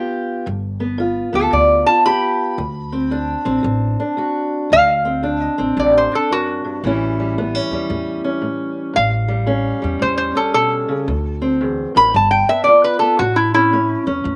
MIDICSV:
0, 0, Header, 1, 4, 480
1, 0, Start_track
1, 0, Tempo, 529568
1, 430, Time_signature, 4, 2, 24, 8
1, 13014, End_track
2, 0, Start_track
2, 0, Title_t, "Resonator guitar played with a steel bar"
2, 0, Program_c, 0, 25
2, 1225, Note_on_c, 0, 69, 83
2, 1383, Note_off_c, 0, 69, 0
2, 1389, Note_on_c, 0, 74, 71
2, 1687, Note_off_c, 0, 74, 0
2, 1691, Note_on_c, 0, 81, 90
2, 1855, Note_off_c, 0, 81, 0
2, 1864, Note_on_c, 0, 83, 99
2, 3272, Note_off_c, 0, 83, 0
2, 4285, Note_on_c, 0, 77, 113
2, 4910, Note_off_c, 0, 77, 0
2, 4910, Note_on_c, 0, 75, 113
2, 5210, Note_off_c, 0, 75, 0
2, 5253, Note_on_c, 0, 74, 69
2, 5398, Note_off_c, 0, 74, 0
2, 5416, Note_on_c, 0, 72, 78
2, 5560, Note_off_c, 0, 72, 0
2, 5577, Note_on_c, 0, 69, 85
2, 5721, Note_off_c, 0, 69, 0
2, 5732, Note_on_c, 0, 66, 90
2, 6654, Note_off_c, 0, 66, 0
2, 8120, Note_on_c, 0, 77, 111
2, 9047, Note_off_c, 0, 77, 0
2, 9082, Note_on_c, 0, 72, 86
2, 9213, Note_off_c, 0, 72, 0
2, 9224, Note_on_c, 0, 72, 82
2, 9383, Note_off_c, 0, 72, 0
2, 9397, Note_on_c, 0, 69, 82
2, 9545, Note_off_c, 0, 69, 0
2, 9556, Note_on_c, 0, 69, 98
2, 10485, Note_off_c, 0, 69, 0
2, 10849, Note_on_c, 0, 83, 100
2, 10995, Note_off_c, 0, 83, 0
2, 11022, Note_on_c, 0, 81, 78
2, 11153, Note_off_c, 0, 81, 0
2, 11156, Note_on_c, 0, 79, 91
2, 11309, Note_off_c, 0, 79, 0
2, 11322, Note_on_c, 0, 76, 85
2, 11452, Note_off_c, 0, 76, 0
2, 11455, Note_on_c, 0, 74, 81
2, 11618, Note_off_c, 0, 74, 0
2, 11641, Note_on_c, 0, 71, 81
2, 11772, Note_off_c, 0, 71, 0
2, 11776, Note_on_c, 0, 69, 91
2, 11938, Note_off_c, 0, 69, 0
2, 11955, Note_on_c, 0, 66, 89
2, 12108, Note_off_c, 0, 66, 0
2, 12110, Note_on_c, 0, 64, 88
2, 12265, Note_off_c, 0, 64, 0
2, 12276, Note_on_c, 0, 64, 100
2, 12738, Note_off_c, 0, 64, 0
2, 13014, End_track
3, 0, Start_track
3, 0, Title_t, "Steel-string acoustic guitar"
3, 0, Program_c, 1, 25
3, 0, Note_on_c, 1, 43, 67
3, 0, Note_on_c, 1, 59, 61
3, 0, Note_on_c, 1, 65, 56
3, 0, Note_on_c, 1, 67, 66
3, 394, Note_off_c, 1, 43, 0
3, 403, Note_off_c, 1, 59, 0
3, 412, Note_off_c, 1, 67, 0
3, 413, Note_off_c, 1, 65, 0
3, 418, Note_on_c, 1, 43, 72
3, 726, Note_on_c, 1, 59, 54
3, 870, Note_off_c, 1, 43, 0
3, 889, Note_on_c, 1, 43, 80
3, 904, Note_on_c, 1, 65, 60
3, 1192, Note_off_c, 1, 59, 0
3, 1203, Note_on_c, 1, 59, 59
3, 1345, Note_off_c, 1, 43, 0
3, 1366, Note_on_c, 1, 43, 74
3, 1690, Note_off_c, 1, 65, 0
3, 1701, Note_on_c, 1, 65, 54
3, 1824, Note_off_c, 1, 43, 0
3, 1863, Note_on_c, 1, 43, 68
3, 1871, Note_on_c, 1, 67, 66
3, 2313, Note_off_c, 1, 43, 0
3, 2322, Note_off_c, 1, 59, 0
3, 2331, Note_off_c, 1, 65, 0
3, 2331, Note_off_c, 1, 67, 0
3, 2338, Note_on_c, 1, 38, 76
3, 2650, Note_on_c, 1, 60, 55
3, 2790, Note_off_c, 1, 38, 0
3, 2819, Note_on_c, 1, 38, 77
3, 2824, Note_on_c, 1, 62, 63
3, 3124, Note_off_c, 1, 60, 0
3, 3128, Note_on_c, 1, 60, 58
3, 3271, Note_off_c, 1, 38, 0
3, 3288, Note_on_c, 1, 38, 77
3, 3612, Note_off_c, 1, 62, 0
3, 3623, Note_on_c, 1, 62, 60
3, 3746, Note_off_c, 1, 38, 0
3, 3779, Note_on_c, 1, 38, 71
3, 3788, Note_on_c, 1, 66, 63
3, 4231, Note_off_c, 1, 38, 0
3, 4245, Note_off_c, 1, 60, 0
3, 4250, Note_off_c, 1, 66, 0
3, 4252, Note_off_c, 1, 62, 0
3, 4260, Note_on_c, 1, 38, 67
3, 4577, Note_on_c, 1, 60, 52
3, 4712, Note_off_c, 1, 38, 0
3, 4736, Note_on_c, 1, 38, 75
3, 4743, Note_on_c, 1, 62, 60
3, 5047, Note_off_c, 1, 60, 0
3, 5058, Note_on_c, 1, 60, 62
3, 5190, Note_off_c, 1, 38, 0
3, 5225, Note_on_c, 1, 38, 72
3, 5533, Note_off_c, 1, 62, 0
3, 5544, Note_on_c, 1, 62, 51
3, 5675, Note_off_c, 1, 38, 0
3, 5713, Note_on_c, 1, 42, 58
3, 6020, Note_off_c, 1, 42, 0
3, 6024, Note_on_c, 1, 43, 62
3, 6170, Note_off_c, 1, 60, 0
3, 6173, Note_off_c, 1, 62, 0
3, 6194, Note_off_c, 1, 43, 0
3, 6199, Note_on_c, 1, 45, 70
3, 6204, Note_on_c, 1, 52, 60
3, 6210, Note_on_c, 1, 55, 55
3, 6221, Note_on_c, 1, 61, 59
3, 6224, Note_on_c, 1, 64, 67
3, 6520, Note_off_c, 1, 55, 0
3, 6523, Note_on_c, 1, 55, 55
3, 6642, Note_off_c, 1, 45, 0
3, 6686, Note_off_c, 1, 61, 0
3, 6690, Note_on_c, 1, 45, 79
3, 6690, Note_on_c, 1, 59, 61
3, 6841, Note_off_c, 1, 59, 0
3, 6841, Note_on_c, 1, 61, 51
3, 7002, Note_off_c, 1, 55, 0
3, 7006, Note_on_c, 1, 55, 61
3, 7128, Note_off_c, 1, 45, 0
3, 7160, Note_on_c, 1, 45, 74
3, 7461, Note_off_c, 1, 61, 0
3, 7472, Note_on_c, 1, 61, 55
3, 7602, Note_off_c, 1, 45, 0
3, 7628, Note_on_c, 1, 45, 70
3, 7647, Note_off_c, 1, 64, 0
3, 8076, Note_off_c, 1, 45, 0
3, 8097, Note_off_c, 1, 61, 0
3, 8098, Note_off_c, 1, 52, 0
3, 8099, Note_on_c, 1, 45, 72
3, 8403, Note_off_c, 1, 55, 0
3, 8414, Note_on_c, 1, 55, 58
3, 8552, Note_off_c, 1, 45, 0
3, 8579, Note_on_c, 1, 45, 79
3, 8584, Note_on_c, 1, 61, 64
3, 8888, Note_off_c, 1, 55, 0
3, 8899, Note_on_c, 1, 55, 56
3, 9032, Note_off_c, 1, 45, 0
3, 9058, Note_on_c, 1, 45, 72
3, 9371, Note_off_c, 1, 61, 0
3, 9382, Note_on_c, 1, 61, 59
3, 9511, Note_off_c, 1, 45, 0
3, 9552, Note_on_c, 1, 47, 60
3, 9861, Note_off_c, 1, 47, 0
3, 9866, Note_on_c, 1, 49, 61
3, 10012, Note_off_c, 1, 61, 0
3, 10031, Note_off_c, 1, 55, 0
3, 10034, Note_off_c, 1, 49, 0
3, 10043, Note_on_c, 1, 38, 78
3, 10348, Note_on_c, 1, 60, 58
3, 10483, Note_off_c, 1, 38, 0
3, 10521, Note_on_c, 1, 40, 70
3, 10825, Note_off_c, 1, 40, 0
3, 10829, Note_on_c, 1, 42, 67
3, 10974, Note_off_c, 1, 60, 0
3, 10996, Note_off_c, 1, 42, 0
3, 11002, Note_on_c, 1, 43, 73
3, 11323, Note_on_c, 1, 59, 57
3, 11442, Note_off_c, 1, 43, 0
3, 11483, Note_on_c, 1, 43, 70
3, 11494, Note_on_c, 1, 65, 61
3, 11784, Note_off_c, 1, 59, 0
3, 11795, Note_on_c, 1, 59, 61
3, 11922, Note_off_c, 1, 43, 0
3, 11938, Note_off_c, 1, 59, 0
3, 11942, Note_off_c, 1, 65, 0
3, 11963, Note_on_c, 1, 45, 75
3, 12276, Note_on_c, 1, 61, 60
3, 12402, Note_off_c, 1, 45, 0
3, 12438, Note_off_c, 1, 61, 0
3, 12439, Note_on_c, 1, 45, 81
3, 12448, Note_on_c, 1, 61, 69
3, 12739, Note_off_c, 1, 61, 0
3, 12750, Note_on_c, 1, 61, 66
3, 12880, Note_off_c, 1, 45, 0
3, 12908, Note_on_c, 1, 45, 80
3, 13014, Note_off_c, 1, 45, 0
3, 13014, Note_off_c, 1, 61, 0
3, 13014, End_track
4, 0, Start_track
4, 0, Title_t, "Upright bass"
4, 0, Program_c, 2, 32
4, 424, Note_on_c, 2, 31, 87
4, 1103, Note_off_c, 2, 31, 0
4, 1213, Note_on_c, 2, 38, 82
4, 1362, Note_off_c, 2, 38, 0
4, 1383, Note_on_c, 2, 38, 84
4, 1651, Note_off_c, 2, 38, 0
4, 2339, Note_on_c, 2, 38, 93
4, 3021, Note_off_c, 2, 38, 0
4, 3134, Note_on_c, 2, 33, 86
4, 3283, Note_off_c, 2, 33, 0
4, 3301, Note_on_c, 2, 33, 92
4, 3571, Note_off_c, 2, 33, 0
4, 4276, Note_on_c, 2, 38, 92
4, 4951, Note_off_c, 2, 38, 0
4, 5068, Note_on_c, 2, 33, 79
4, 5212, Note_off_c, 2, 33, 0
4, 5228, Note_on_c, 2, 33, 88
4, 5495, Note_off_c, 2, 33, 0
4, 6196, Note_on_c, 2, 33, 85
4, 6871, Note_off_c, 2, 33, 0
4, 6991, Note_on_c, 2, 40, 80
4, 7134, Note_off_c, 2, 40, 0
4, 7159, Note_on_c, 2, 40, 87
4, 7422, Note_off_c, 2, 40, 0
4, 8132, Note_on_c, 2, 33, 90
4, 8800, Note_off_c, 2, 33, 0
4, 8917, Note_on_c, 2, 40, 79
4, 9057, Note_off_c, 2, 40, 0
4, 9084, Note_on_c, 2, 40, 86
4, 9344, Note_off_c, 2, 40, 0
4, 10041, Note_on_c, 2, 38, 91
4, 10713, Note_off_c, 2, 38, 0
4, 10840, Note_on_c, 2, 33, 83
4, 10978, Note_off_c, 2, 33, 0
4, 11007, Note_on_c, 2, 31, 90
4, 11265, Note_off_c, 2, 31, 0
4, 11960, Note_on_c, 2, 33, 92
4, 12632, Note_off_c, 2, 33, 0
4, 12752, Note_on_c, 2, 40, 86
4, 12893, Note_off_c, 2, 40, 0
4, 12918, Note_on_c, 2, 40, 91
4, 13014, Note_off_c, 2, 40, 0
4, 13014, End_track
0, 0, End_of_file